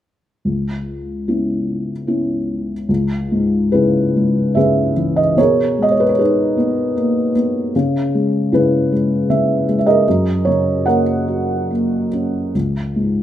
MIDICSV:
0, 0, Header, 1, 2, 480
1, 0, Start_track
1, 0, Tempo, 821918
1, 265, Time_signature, 3, 2, 24, 8
1, 3143, Tempo, 793651
1, 4103, Tempo, 773196
1, 6023, Tempo, 800000
1, 6503, Tempo, 834492
1, 7864, End_track
2, 0, Start_track
2, 0, Title_t, "Felt piano"
2, 0, Program_c, 0, 0
2, 262, Note_on_c, 0, 37, 28
2, 384, Control_c, 0, 64, 127
2, 747, Note_on_c, 0, 59, 26
2, 747, Note_on_c, 0, 61, 22
2, 750, Note_on_c, 0, 64, 29
2, 1122, Note_off_c, 0, 59, 0
2, 1122, Note_off_c, 0, 61, 0
2, 1124, Note_off_c, 0, 64, 0
2, 1210, Note_on_c, 0, 59, 33
2, 1213, Note_on_c, 0, 61, 30
2, 1214, Note_on_c, 0, 64, 38
2, 1591, Note_off_c, 0, 59, 0
2, 1593, Note_off_c, 0, 61, 0
2, 1593, Note_off_c, 0, 64, 0
2, 1664, Note_off_c, 0, 37, 0
2, 1685, Note_on_c, 0, 37, 40
2, 1698, Control_c, 0, 64, 0
2, 1786, Control_c, 0, 64, 127
2, 1937, Note_on_c, 0, 44, 35
2, 2172, Note_on_c, 0, 71, 57
2, 2182, Note_on_c, 0, 64, 39
2, 2186, Note_on_c, 0, 49, 34
2, 2186, Note_on_c, 0, 68, 39
2, 2432, Note_on_c, 0, 56, 38
2, 2656, Note_on_c, 0, 76, 61
2, 2658, Note_off_c, 0, 49, 0
2, 2658, Note_off_c, 0, 68, 0
2, 2660, Note_off_c, 0, 71, 0
2, 2667, Note_on_c, 0, 49, 38
2, 2667, Note_on_c, 0, 68, 51
2, 2669, Note_on_c, 0, 71, 43
2, 2879, Note_off_c, 0, 44, 0
2, 2879, Note_off_c, 0, 64, 0
2, 2900, Note_on_c, 0, 52, 36
2, 3015, Note_on_c, 0, 75, 57
2, 3029, Note_off_c, 0, 76, 0
2, 3117, Note_off_c, 0, 37, 0
2, 3121, Note_off_c, 0, 68, 0
2, 3122, Note_off_c, 0, 71, 0
2, 3125, Note_off_c, 0, 56, 0
2, 3130, Note_off_c, 0, 49, 0
2, 3130, Note_off_c, 0, 75, 0
2, 3134, Note_off_c, 0, 52, 0
2, 3134, Note_on_c, 0, 47, 45
2, 3140, Note_on_c, 0, 73, 72
2, 3147, Note_on_c, 0, 68, 50
2, 3150, Control_c, 0, 64, 0
2, 3150, Note_on_c, 0, 70, 52
2, 3266, Control_c, 0, 64, 127
2, 3385, Note_on_c, 0, 56, 36
2, 3410, Note_on_c, 0, 75, 63
2, 3423, Note_off_c, 0, 73, 0
2, 3465, Note_on_c, 0, 73, 55
2, 3467, Note_off_c, 0, 75, 0
2, 3517, Note_on_c, 0, 71, 62
2, 3521, Note_off_c, 0, 73, 0
2, 3571, Note_on_c, 0, 73, 55
2, 3573, Note_off_c, 0, 71, 0
2, 3626, Note_off_c, 0, 73, 0
2, 3630, Note_on_c, 0, 71, 53
2, 3634, Note_off_c, 0, 68, 0
2, 3642, Note_on_c, 0, 63, 37
2, 3643, Note_on_c, 0, 68, 35
2, 3846, Note_off_c, 0, 70, 0
2, 3863, Note_on_c, 0, 59, 44
2, 4079, Note_off_c, 0, 71, 0
2, 4101, Note_on_c, 0, 58, 42
2, 4317, Note_off_c, 0, 56, 0
2, 4325, Note_off_c, 0, 63, 0
2, 4326, Note_off_c, 0, 68, 0
2, 4332, Note_off_c, 0, 59, 0
2, 4342, Note_on_c, 0, 59, 42
2, 4554, Note_off_c, 0, 47, 0
2, 4568, Note_off_c, 0, 58, 0
2, 4575, Note_off_c, 0, 59, 0
2, 4590, Control_c, 0, 64, 0
2, 4592, Note_on_c, 0, 49, 53
2, 4708, Control_c, 0, 64, 127
2, 4833, Note_on_c, 0, 56, 41
2, 5064, Note_off_c, 0, 49, 0
2, 5067, Note_on_c, 0, 64, 40
2, 5073, Note_on_c, 0, 49, 42
2, 5073, Note_on_c, 0, 68, 43
2, 5079, Note_on_c, 0, 71, 63
2, 5306, Note_off_c, 0, 56, 0
2, 5316, Note_on_c, 0, 56, 42
2, 5528, Note_off_c, 0, 71, 0
2, 5539, Note_off_c, 0, 49, 0
2, 5548, Note_on_c, 0, 49, 40
2, 5549, Note_on_c, 0, 76, 57
2, 5757, Note_off_c, 0, 64, 0
2, 5760, Note_off_c, 0, 68, 0
2, 5780, Note_off_c, 0, 56, 0
2, 5789, Note_on_c, 0, 56, 41
2, 5843, Note_off_c, 0, 76, 0
2, 5853, Note_on_c, 0, 76, 44
2, 5898, Note_off_c, 0, 76, 0
2, 5900, Note_on_c, 0, 75, 65
2, 5901, Note_on_c, 0, 68, 50
2, 5904, Note_on_c, 0, 70, 50
2, 6009, Note_off_c, 0, 49, 0
2, 6020, Note_off_c, 0, 56, 0
2, 6030, Control_c, 0, 64, 0
2, 6034, Note_on_c, 0, 42, 49
2, 6127, Control_c, 0, 64, 127
2, 6255, Note_on_c, 0, 73, 65
2, 6268, Note_on_c, 0, 49, 34
2, 6271, Note_off_c, 0, 75, 0
2, 6497, Note_off_c, 0, 70, 0
2, 6499, Note_on_c, 0, 78, 59
2, 6502, Note_off_c, 0, 73, 0
2, 6502, Note_on_c, 0, 58, 41
2, 6506, Note_on_c, 0, 70, 42
2, 6511, Note_on_c, 0, 73, 44
2, 6597, Note_off_c, 0, 68, 0
2, 6744, Note_on_c, 0, 66, 36
2, 6980, Note_off_c, 0, 58, 0
2, 6989, Note_on_c, 0, 58, 37
2, 7201, Note_off_c, 0, 78, 0
2, 7204, Note_off_c, 0, 70, 0
2, 7206, Note_off_c, 0, 49, 0
2, 7207, Note_off_c, 0, 73, 0
2, 7232, Note_on_c, 0, 61, 36
2, 7449, Note_off_c, 0, 66, 0
2, 7451, Note_off_c, 0, 42, 0
2, 7458, Note_off_c, 0, 58, 0
2, 7465, Note_off_c, 0, 61, 0
2, 7473, Note_on_c, 0, 37, 41
2, 7477, Control_c, 0, 64, 0
2, 7585, Control_c, 0, 64, 127
2, 7710, Note_on_c, 0, 44, 34
2, 7864, Note_off_c, 0, 37, 0
2, 7864, Note_off_c, 0, 44, 0
2, 7864, End_track
0, 0, End_of_file